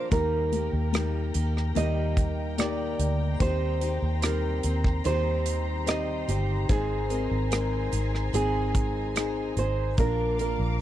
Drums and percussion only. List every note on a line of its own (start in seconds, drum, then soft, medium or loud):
0.12 kick medium
0.12 closed hi-hat medium
0.53 closed hi-hat soft
0.94 cross-stick medium
0.94 closed hi-hat medium
1.34 closed hi-hat medium
1.57 cross-stick soft
1.76 closed hi-hat medium
2.17 kick medium
2.17 closed hi-hat medium
2.58 cross-stick medium
2.58 closed hi-hat medium
3.00 closed hi-hat medium
3.40 kick medium
3.40 closed hi-hat medium
3.81 closed hi-hat medium
4.22 cross-stick medium
4.22 closed hi-hat medium
4.63 closed hi-hat medium
4.84 kick medium
4.84 cross-stick soft
5.05 closed hi-hat medium
5.46 closed hi-hat medium
5.87 cross-stick medium
5.87 closed hi-hat medium
6.29 closed hi-hat medium
6.69 kick medium
6.69 closed hi-hat medium
7.10 closed hi-hat soft
7.52 cross-stick medium
7.52 closed hi-hat medium
7.93 closed hi-hat medium
8.15 cross-stick soft
8.34 closed hi-hat medium
8.75 kick medium
8.75 closed hi-hat medium
9.16 cross-stick medium
9.16 closed hi-hat medium
9.57 closed hi-hat medium
9.98 kick medium
9.98 closed hi-hat medium
10.39 closed hi-hat soft